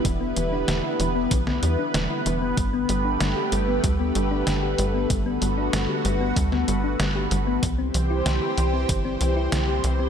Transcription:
0.00 2.53 D3 medium
0.00 2.54 G3 medium
0.00 7.59 B3 medium
0.00 2.54 E4 medium
0.00 7.59 B4 medium
0.05 0.33 E1 medium
0.05 0.15 E3 medium
0.05 kick loud
0.05 closed hi-hat medium
0.21 0.31 B3 loud
0.36 0.65 E1 medium
0.36 0.51 E3 medium
0.36 closed hi-hat medium
0.52 0.58 D4 medium
0.68 0.82 E1 medium
0.68 0.78 E3 medium
0.68 snare loud
0.68 closed hi-hat medium
0.84 0.94 E4 medium
1.00 1.28 E1 loud
1.00 1.09 E3 medium
1.00 closed hi-hat medium
1.15 1.25 B3 medium
1.31 1.59 B1 loud
1.31 1.41 E3 medium
1.31 kick loud
1.31 closed hi-hat medium
1.47 1.57 B3 medium
1.47 snare soft
1.63 1.77 E2 medium
1.63 1.78 E3 medium
1.63 closed hi-hat medium
1.79 1.85 D4 medium
1.94 2.08 E1 medium
1.94 2.04 E3 medium
1.94 snare loud
1.94 closed hi-hat medium
2.10 2.20 E4 medium
2.26 2.54 E1 medium
2.26 2.36 E3 medium
2.26 closed hi-hat medium
2.42 2.52 B3 medium
2.57 2.86 G1 medium
2.57 7.59 D3 medium
2.57 2.67 G3 medium
2.57 7.59 A3 medium
2.57 5.08 G4 medium
2.57 kick loud
2.57 closed hi-hat medium
2.73 2.83 B3 loud
2.89 3.17 G1 medium
2.89 3.04 G3 medium
2.89 closed hi-hat medium
3.05 3.11 D4 medium
3.21 3.35 G1 medium
3.21 3.31 G3 medium
3.21 snare loud
3.21 closed hi-hat medium
3.36 3.46 G4 medium
3.52 3.80 G1 loud
3.52 3.62 G3 medium
3.52 closed hi-hat medium
3.68 3.78 B3 medium
3.84 4.12 D2 medium
3.84 3.94 G3 medium
3.84 kick loud
3.84 closed hi-hat medium
4.00 4.09 B3 medium
4.15 4.44 G1 medium
4.15 4.30 G3 medium
4.15 closed hi-hat medium
4.31 4.37 D4 medium
4.47 4.75 G1 medium
4.47 4.57 G3 medium
4.47 snare loud
4.47 closed hi-hat medium
4.63 4.73 G4 medium
4.78 5.07 G1 loud
4.78 4.88 G3 medium
4.78 closed hi-hat medium
4.94 5.04 B3 medium
5.10 5.38 G1 medium
5.10 5.20 G3 medium
5.10 7.60 F#4 medium
5.10 kick loud
5.10 closed hi-hat medium
5.26 5.36 B3 loud
5.42 5.70 G1 medium
5.42 5.57 G3 medium
5.42 closed hi-hat medium
5.58 5.63 D4 medium
5.73 5.87 G1 medium
5.73 5.83 G3 medium
5.73 snare loud
5.73 closed hi-hat medium
5.89 5.99 G4 medium
6.05 6.33 G1 loud
6.05 6.15 G3 medium
6.05 closed hi-hat medium
6.21 6.30 B3 medium
6.36 6.65 D2 loud
6.36 6.46 G3 medium
6.36 kick loud
6.36 closed hi-hat medium
6.52 6.62 B3 loud
6.52 snare soft
6.68 6.96 G1 medium
6.68 6.83 G3 medium
6.68 closed hi-hat medium
6.84 6.90 D4 medium
7.00 7.28 G1 medium
7.00 7.09 G3 medium
7.00 snare loud
7.00 closed hi-hat medium
7.16 7.25 G4 medium
7.31 7.59 G1 loud
7.31 7.41 G3 medium
7.31 closed hi-hat medium
7.47 7.57 B3 medium
7.63 7.91 C2 loud
7.63 7.73 E3 medium
7.63 10.09 E3 medium
7.63 10.09 G3 medium
7.63 10.09 C4 medium
7.63 10.09 G4 medium
7.63 10.09 C5 medium
7.63 kick loud
7.63 closed hi-hat medium
7.79 7.88 C4 loud
7.94 8.22 C2 medium
7.94 8.09 E3 medium
7.94 closed hi-hat medium
8.10 8.16 E4 medium
8.26 8.40 C2 loud
8.26 8.36 E3 medium
8.26 snare loud
8.26 closed hi-hat medium
8.42 8.52 G4 medium
8.58 8.86 C2 loud
8.58 8.67 E3 medium
8.58 closed hi-hat medium
8.73 8.83 C4 medium
8.89 9.17 G1 loud
8.89 8.99 E3 medium
8.89 kick loud
8.89 closed hi-hat medium
9.05 9.15 C4 loud
9.21 9.49 C2 medium
9.21 9.35 E3 medium
9.21 closed hi-hat medium
9.37 9.42 E4 medium
9.52 9.80 C2 medium
9.52 9.62 E3 medium
9.52 snare loud
9.52 closed hi-hat medium
9.68 9.78 G4 medium
9.84 10.09 C2 loud
9.84 9.94 E3 medium
9.84 closed hi-hat medium
10.00 10.09 C4 medium

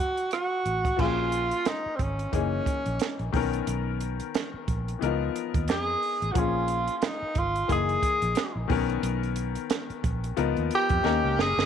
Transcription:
0.00 0.93 D#3 medium
0.00 0.94 F#3 soft
0.00 0.95 C#4 soft
0.00 0.33 F#4 medium
0.00 0.95 F5 medium
0.17 closed hi-hat soft
0.31 1.02 F#4 medium
0.31 cross-stick medium
0.31 closed hi-hat medium
0.65 0.91 A1 medium
0.65 closed hi-hat medium
0.85 kick medium
0.85 cross-stick soft
0.85 closed hi-hat soft
0.96 1.51 A#1 medium
0.96 2.29 F3 medium
0.96 2.30 A#3 medium
0.96 2.31 C#4 medium
0.96 1.70 F4 loud
0.96 kick medium
0.96 crash medium
1.01 2.31 G#4 medium
1.32 closed hi-hat medium
1.51 closed hi-hat medium
1.65 1.98 D#4 medium
1.65 snare loud
1.65 closed hi-hat medium
1.86 muted fingered electric bass stroke soft
1.96 2.25 G#1 medium
1.96 2.04 C4 medium
1.96 kick medium
1.96 closed hi-hat medium
2.02 2.34 C#4 medium
2.19 closed hi-hat soft
2.32 2.59 F#1 loud
2.32 3.33 E3 medium
2.32 3.34 A#3 soft
2.32 3.31 C#4 medium
2.32 3.34 D#4 medium
2.32 3.34 G#4 medium
2.32 kick medium
2.32 closed hi-hat medium
2.66 kick medium
2.66 closed hi-hat medium
2.86 2.97 A#1 loud
2.86 closed hi-hat soft
2.99 snare medium
2.99 closed hi-hat medium
3.19 3.30 A#1 medium
3.19 closed hi-hat soft
3.32 3.60 B1 medium
3.32 4.97 D#3 medium
3.32 4.98 B3 medium
3.32 4.99 C#4 medium
3.32 5.00 A#4 medium
3.32 kick medium
3.32 open hi-hat medium
3.53 closed hi-hat soft
3.67 4.19 B1 medium
3.67 closed hi-hat medium
4.00 closed hi-hat medium
4.20 closed hi-hat medium
4.34 snare loud
4.34 closed hi-hat medium
4.54 muted fingered electric bass stroke soft
4.68 4.94 A#1 medium
4.68 kick medium
4.68 closed hi-hat medium
4.88 closed hi-hat soft
4.99 5.28 C#2 medium
4.99 5.08 E3 soft
4.99 6.33 B3 medium
4.99 6.33 D#4 medium
4.99 closed hi-hat medium
5.03 6.32 F3 medium
5.03 6.34 A#4 medium
5.36 closed hi-hat medium
5.54 5.69 D#2 medium
5.54 kick medium
5.54 closed hi-hat soft
5.68 5.95 F2 loud
5.68 6.33 G#4 medium
5.68 snare medium
5.68 closed hi-hat medium
6.03 open hi-hat medium
6.22 6.33 A1 medium
6.22 closed hi-hat soft
6.32 6.88 A#1 loud
6.32 7.66 F3 medium
6.32 7.67 A#3 medium
6.32 6.41 F#4 medium
6.32 kick loud
6.32 closed hi-hat medium
6.36 7.67 C#4 medium
6.36 6.98 F4 medium
6.36 7.68 G#4 medium
6.68 closed hi-hat medium
6.87 closed hi-hat medium
6.98 7.07 F4 medium
6.98 closed hi-hat medium
7.03 7.40 D#4 medium
7.03 snare loud
7.22 muted fingered electric bass stroke soft
7.35 7.62 G#1 medium
7.35 7.71 F4 medium
7.35 kick medium
7.35 closed hi-hat medium
7.56 closed hi-hat soft
7.68 7.96 F#1 loud
7.68 8.70 E3 medium
7.68 8.70 A#3 medium
7.68 8.70 D#4 soft
7.68 8.71 G#4 medium
7.68 kick medium
7.68 closed hi-hat medium
7.72 8.68 G#4 loud
7.89 closed hi-hat soft
8.03 kick medium
8.03 closed hi-hat medium
8.22 8.33 A#1 medium
8.22 closed hi-hat soft
8.35 snare medium
8.35 closed hi-hat medium
8.56 8.67 A#1 medium
8.68 8.96 B1 loud
8.68 10.33 D#3 medium
8.68 10.34 B3 medium
8.68 10.35 C#4 medium
8.68 10.35 A#4 medium
8.68 kick medium
8.68 open hi-hat soft
8.89 closed hi-hat soft
9.03 9.56 B1 loud
9.03 closed hi-hat medium
9.23 closed hi-hat soft
9.36 closed hi-hat medium
9.55 closed hi-hat medium
9.70 snare loud
9.70 closed hi-hat medium
9.90 muted fingered electric bass stroke soft
9.90 closed hi-hat soft
10.04 10.30 A#1 medium
10.04 kick medium
10.04 closed hi-hat medium
10.24 closed hi-hat soft
10.36 10.53 C#2 medium
10.36 11.04 F3 medium
10.36 11.05 B3 medium
10.36 11.03 D#4 medium
10.36 11.03 A#4 medium
10.36 closed hi-hat medium
10.57 10.68 D#2 medium
10.57 closed hi-hat soft
10.71 closed hi-hat medium
10.75 11.43 G4 loud
10.89 11.02 F2 medium
10.89 kick medium
10.89 closed hi-hat soft
11.03 11.20 D#2 medium
11.03 11.65 A#3 medium
11.03 11.65 C#4 medium
11.03 11.65 D#4 medium
11.03 11.65 A#4 medium
11.03 snare soft
11.24 11.35 C#2 medium
11.38 11.53 F#1 medium
11.38 11.65 G#4 loud
11.38 snare medium
11.58 11.65 G1 medium
11.58 snare medium

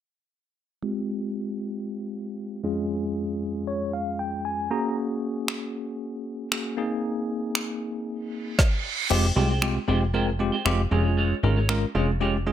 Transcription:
0.83 2.60 G#3 medium
0.83 2.60 C4 medium
0.83 2.60 F4 medium
0.83 2.61 G4 medium
2.63 4.67 F2 medium
2.63 4.67 G#3 medium
2.63 4.67 C#4 medium
2.63 4.67 F4 medium
2.63 4.67 G#4 medium
3.67 3.91 C#5 medium
3.93 4.17 F5 medium
4.19 4.43 G5 medium
4.45 4.69 G#5 medium
4.70 6.48 A#3 medium
4.70 6.48 C#4 medium
4.70 6.48 F#4 medium
4.70 6.49 G#4 medium
4.70 4.95 A#5 medium
5.48 finger snap loud
6.52 6.76 A#3 medium
6.52 6.78 C#4 soft
6.52 6.78 F#4 soft
6.52 6.77 G#4 medium
6.52 finger snap loud
6.77 8.55 A#3 medium
6.77 8.55 C4 medium
6.77 8.55 D#4 medium
6.77 8.55 G#4 medium
7.55 finger snap loud
8.07 reverse cymbal medium
8.59 kick loud
8.59 snare medium
9.10 9.32 F1 loud
9.10 9.26 G#3 loud
9.10 9.26 C4 medium
9.10 9.26 F4 medium
9.10 9.26 G4 loud
9.10 9.28 G#4 medium
9.10 9.28 C5 medium
9.10 9.28 G5 medium
9.10 crash medium
9.36 9.79 C2 loud
9.36 9.51 G#3 medium
9.36 9.52 C4 medium
9.36 9.52 F4 medium
9.36 9.52 G4 medium
9.36 9.49 G#4 medium
9.36 9.48 C5 medium
9.36 9.48 G5 medium
9.49 9.63 G#4 medium
9.49 9.63 C5 medium
9.49 9.63 G5 medium
9.62 9.77 G#3 medium
9.62 9.77 C4 medium
9.62 9.77 F4 medium
9.62 9.78 G4 medium
9.62 finger snap loud
9.75 muted clean electric guitar stroke soft
9.88 10.52 F1 medium
9.88 10.03 G#3 medium
9.88 10.03 C4 medium
9.88 10.03 F4 medium
9.88 10.03 G4 medium
9.88 10.05 G#4 medium
9.88 10.01 C5 medium
9.88 10.00 G5 medium
10.01 muted clean electric guitar stroke soft
10.14 10.29 G#3 medium
10.14 10.29 C4 medium
10.14 10.29 F4 medium
10.14 10.31 G#4 medium
10.14 10.29 A#4 medium
10.14 10.27 C5 medium
10.14 10.26 G5 medium
10.27 muted clean electric guitar stroke soft
10.39 10.55 G#3 medium
10.39 10.55 C4 medium
10.39 10.55 F4 medium
10.39 10.55 G4 medium
10.39 muted clean electric guitar stroke soft
10.52 10.64 G#4 soft
10.52 10.65 C5 medium
10.52 10.65 G5 medium
10.65 10.87 F1 loud
10.65 10.81 G#3 loud
10.65 10.81 C4 loud
10.65 10.81 F4 loud
10.65 10.81 G4 loud
10.65 finger snap loud
10.65 muted clean electric guitar stroke soft
10.78 muted clean electric guitar stroke soft
10.91 11.34 F1 loud
10.91 11.33 G#3 medium
10.91 11.33 C#4 medium
10.91 11.04 F4 medium
10.91 11.33 F4 medium
10.91 11.33 G#4 medium
10.91 11.04 G#4 medium
10.91 11.03 C#5 medium
11.04 11.16 F4 medium
11.04 11.17 G#4 medium
11.04 11.17 C#5 medium
11.17 11.35 F4 medium
11.17 11.35 G#4 medium
11.17 11.35 C#5 loud
11.43 11.86 G#1 loud
11.43 11.58 G#3 medium
11.43 11.58 C#4 medium
11.43 11.56 F4 medium
11.43 11.59 F4 medium
11.43 11.56 G#4 medium
11.43 11.59 A#4 medium
11.43 11.55 C#5 medium
11.56 11.70 F4 medium
11.56 11.70 G#4 medium
11.56 11.70 C#5 medium
11.69 11.84 G#3 medium
11.69 11.84 C#4 medium
11.69 11.84 F4 medium
11.69 11.85 A#4 medium
11.69 finger snap loud
11.82 muted clean electric guitar stroke soft
11.95 12.52 F1 medium
11.95 12.10 G#3 medium
11.95 12.10 C#4 medium
11.95 12.12 F4 medium
11.95 12.10 F4 medium
11.95 12.10 G#4 medium
11.95 12.07 G#4 medium
11.95 12.06 C#5 medium
12.08 muted clean electric guitar stroke soft
12.20 12.36 G#3 medium
12.20 12.36 C#4 medium
12.20 12.38 F4 medium
12.20 12.36 F4 medium
12.20 12.36 G4 medium
12.20 12.34 G#4 medium
12.20 12.33 C#5 medium
12.34 muted clean electric guitar stroke soft
12.46 12.52 G#3 medium
12.46 12.52 C#4 medium
12.46 12.52 F4 medium
12.46 12.52 G#4 medium
12.46 muted clean electric guitar stroke soft

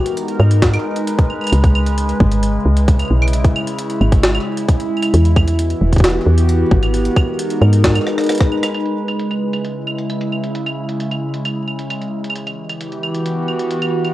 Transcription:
0.00 5.13 G#3 medium
0.00 0.44 B3 medium
0.00 1.53 D#4 medium
0.00 0.44 F#4 medium
0.00 1.53 A#4 medium
0.06 closed hi-hat medium
0.17 closed hi-hat medium
0.28 2.56 B4 medium
0.28 closed hi-hat soft
0.40 0.78 G#2 loud
0.40 claves soft
0.51 closed hi-hat soft
0.62 kick loud
0.62 snare loud
0.62 closed hi-hat medium
0.74 closed hi-hat soft
0.74 claves medium
0.96 closed hi-hat soft
1.07 closed hi-hat medium
1.19 kick loud
1.19 closed hi-hat soft
1.30 claves soft
1.41 claves soft
1.44 closed hi-hat medium
1.44 claves soft
1.47 claves soft
1.50 2.13 C#2 loud
1.50 5.14 C#3 medium
1.50 closed hi-hat medium
1.50 claves medium
1.64 kick loud
1.64 closed hi-hat soft
1.75 claves medium
1.87 closed hi-hat soft
1.98 closed hi-hat medium
2.09 closed hi-hat soft
2.20 2.59 G#1 loud
2.20 kick loud
2.32 closed hi-hat medium
2.43 closed hi-hat medium
2.61 5.86 E4 medium
2.65 3.04 C#2 medium
2.77 closed hi-hat medium
2.88 kick loud
2.88 closed hi-hat medium
2.99 closed hi-hat soft
2.99 claves soft
3.02 claves soft
3.05 claves soft
3.08 3.49 B1 medium
3.08 claves soft
3.22 claves medium
3.28 closed hi-hat soft
3.33 closed hi-hat medium
3.44 kick loud
3.44 closed hi-hat soft
3.56 claves medium
3.67 closed hi-hat soft
3.78 closed hi-hat medium
3.90 closed hi-hat soft
4.01 4.39 G#1 loud
4.01 claves soft
4.12 kick loud
4.12 closed hi-hat soft
4.23 snare loud
4.23 closed hi-hat medium
4.35 claves medium
4.57 closed hi-hat soft
4.68 kick loud
4.68 closed hi-hat medium
4.80 closed hi-hat soft
4.97 claves soft
5.02 closed hi-hat soft
5.02 claves medium
5.14 5.74 E2 loud
5.14 6.94 E3 medium
5.14 closed hi-hat medium
5.25 closed hi-hat soft
5.36 kick loud
5.36 claves medium
5.41 7.66 B3 medium
5.41 7.66 F#4 medium
5.47 closed hi-hat soft
5.59 closed hi-hat medium
5.70 closed hi-hat soft
5.81 6.20 E1 loud
5.87 6.94 G4 medium
5.92 kick soft
5.92 closed hi-hat soft
5.96 kick medium
5.96 closed hi-hat soft
6.00 kick medium
6.00 snare loud
6.00 closed hi-hat medium
6.10 closed hi-hat soft
6.26 6.65 E2 medium
6.38 closed hi-hat medium
6.49 closed hi-hat medium
6.71 7.10 G#1 medium
6.71 kick loud
6.83 closed hi-hat medium
6.83 claves medium
6.94 12.35 G#3 medium
6.94 closed hi-hat medium
7.04 8.74 A#4 medium
7.04 closed hi-hat soft
7.17 kick loud
7.17 claves medium
7.29 8.74 D#4 medium
7.39 closed hi-hat medium
7.50 closed hi-hat soft
7.62 8.00 G#2 loud
7.62 claves soft
7.73 10.19 B4 medium
7.73 closed hi-hat medium
7.84 kick loud
7.84 snare loud
7.84 closed hi-hat medium
7.96 closed hi-hat soft
7.96 claves medium
8.07 cross-stick medium
8.18 cross-stick medium
8.18 closed hi-hat soft
8.21 closed hi-hat soft
8.24 closed hi-hat soft
8.27 cross-stick medium
8.27 closed hi-hat soft
8.29 closed hi-hat medium
8.32 closed hi-hat soft
8.35 closed hi-hat soft
8.38 kick loud
8.38 cross-stick medium
8.38 closed hi-hat soft
8.52 claves soft
8.63 cross-stick medium
8.63 closed hi-hat medium
8.63 claves medium
8.74 12.35 C#3 medium
8.74 closed hi-hat medium
8.74 claves medium
8.86 closed hi-hat soft
9.07 13.08 E4 medium
9.07 closed hi-hat soft
9.07 claves medium
9.20 closed hi-hat medium
9.31 closed hi-hat soft
9.31 claves soft
9.53 closed hi-hat soft
9.53 claves soft
9.65 closed hi-hat medium
9.87 claves medium
9.99 closed hi-hat medium
10.10 closed hi-hat medium
10.10 claves soft
10.21 closed hi-hat soft
10.32 claves soft
10.44 closed hi-hat medium
10.55 closed hi-hat medium
10.66 closed hi-hat soft
10.66 claves medium
10.89 closed hi-hat soft
11.00 closed hi-hat medium
11.11 closed hi-hat soft
11.11 claves soft
11.34 closed hi-hat soft
11.45 closed hi-hat medium
11.45 claves medium
11.68 claves soft
11.79 closed hi-hat medium
11.90 closed hi-hat medium
11.90 claves soft
12.02 closed hi-hat soft
12.24 closed hi-hat medium
12.30 claves medium
12.35 14.14 E3 medium
12.35 closed hi-hat medium
12.47 closed hi-hat soft
12.47 claves soft
12.52 14.14 G4 medium
12.69 closed hi-hat soft
12.69 claves soft
12.80 14.14 B3 medium
12.80 closed hi-hat medium
12.92 14.14 F#4 medium
12.92 closed hi-hat soft
13.03 claves medium
13.14 closed hi-hat soft
13.26 closed hi-hat medium
13.48 claves soft
13.59 closed hi-hat medium
13.71 closed hi-hat medium
13.82 closed hi-hat soft
13.82 claves medium
14.05 closed hi-hat medium
14.05 claves soft

